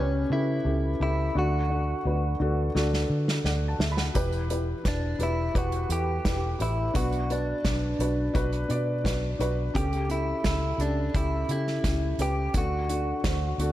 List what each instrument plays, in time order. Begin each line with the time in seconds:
Already playing: fingered electric bass C#2, felt piano C#3 C#4 G4 A4 B4
0.00 clean electric guitar C#4
0.30 fingered electric bass C#3, felt piano C#4 G4 A4, clean electric guitar E4
0.64 fingered electric bass C#2, felt piano C#4 G4 A4
1.00 fingered electric bass C#2, felt piano C#4 G4 A4, clean electric guitar E4
1.35 fingered electric bass D2, felt piano D3 D4 F#4 A4, clean electric guitar F#4
1.69 felt piano D4 F#4 A4
2.05 fingered electric bass D2, felt piano D4 F#4 B4
2.40 fingered electric bass D2, felt piano D4 F#4 A4
2.75 fingered electric bass D2, felt piano D4 F#4 A4, snare
2.93 snare
3.10 fingered electric bass D3
3.28 snare
3.44 fingered electric bass D2, felt piano D5 F#5, snare
3.68 felt piano A5
3.79 fingered electric bass D2, felt piano E5, snare
3.92 felt piano B5
3.97 felt piano F#5, snare
4.14 fingered electric bass E1, felt piano E3 E4 G4 B4, kick, closed hi-hat
4.32 closed hi-hat
4.49 felt piano E4 G4 B4, closed hi-hat
4.84 fingered electric bass E1, felt piano E4 G4 B4, kick, snare, closed hi-hat
4.88 clean electric guitar D4
5.18 fingered electric bass E1, felt piano E4 G4 B4, closed hi-hat
5.23 clean electric guitar E4
5.54 fingered electric bass E1, felt piano E4 G4 B4, kick, closed hi-hat
5.58 clean electric guitar F#4
5.72 closed hi-hat
5.89 fingered electric bass E2, felt piano E4 G4 A4, clean electric guitar G4, closed hi-hat
6.24 fingered electric bass E1, felt piano E4 G4 B4, kick, snare, closed hi-hat
6.59 fingered electric bass A1, felt piano E4 G4 B4, clean electric guitar E4, closed hi-hat
6.94 fingered electric bass B1, felt piano B2 D4 F#4 B4, clean electric guitar F#4, kick, closed hi-hat
7.12 closed hi-hat
7.29 felt piano D4 F#4 B4, clean electric guitar D4, closed hi-hat
7.64 fingered electric bass B1, felt piano D4 F#4 D5, kick, snare, closed hi-hat
7.99 fingered electric bass B1, felt piano D4 F#4 B4, closed hi-hat
8.34 fingered electric bass B1, felt piano D4 F#4 B4, kick, closed hi-hat
8.53 closed hi-hat
8.69 fingered electric bass B2, felt piano D4 F#4 D5, closed hi-hat
9.04 fingered electric bass B1, felt piano D4 F#4 B4, kick, snare, closed hi-hat
9.39 fingered electric bass B1, felt piano D4 F#4 B4, closed hi-hat
9.74 fingered electric bass C#2, felt piano C#3 C#4 G4 A4, clean electric guitar G4, kick, closed hi-hat
9.93 closed hi-hat
10.09 felt piano C#4 G4 A4, clean electric guitar E4, closed hi-hat
10.44 fingered electric bass C#2, felt piano C#4 G4 A4, clean electric guitar E4, kick, snare, closed hi-hat
10.78 fingered electric bass C#2, felt piano C#4 G4 A4, clean electric guitar D4, closed hi-hat
11.14 fingered electric bass C#2, felt piano C#4 G4 A4, clean electric guitar E4, kick, closed hi-hat
11.49 fingered electric bass C#3, felt piano C#4 G4 A4, clean electric guitar E4, closed hi-hat
11.67 snare
11.84 fingered electric bass C#2, felt piano C#4 G4 A4, kick, snare, closed hi-hat
12.18 fingered electric bass C#2, felt piano C#4 G4 B4, clean electric guitar G4, closed hi-hat
12.54 fingered electric bass D2, felt piano D3 D4 F#4 A4, kick, closed hi-hat
12.58 clean electric guitar F#4
12.89 felt piano D4 F#4 A4, closed hi-hat
13.24 fingered electric bass D2, felt piano D4 F#4 C5, kick, snare, closed hi-hat
13.58 fingered electric bass D2, felt piano D4 F#4 A4, closed hi-hat